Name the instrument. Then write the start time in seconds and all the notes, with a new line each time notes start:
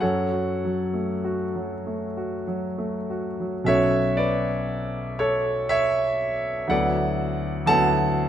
grand piano
0.00 F#2 A4 C#5 F#5
0.32 F#4
0.65 F#3
0.94 A3
1.25 F#4
1.56 F#3
1.87 A3
2.17 F#4
2.47 F#3
2.78 A3
3.10 F#4
3.40 F#3
3.64 B1 F#3 C#4 F#4 A4 C#5 E5
4.17 B4 D5
5.19 A4 C#5
5.69 C#5 E5
6.67 D2 F#3 B3 E4 A4 D5 F#5
7.66 D2 F#3 B3 E4 A4 F#5 A5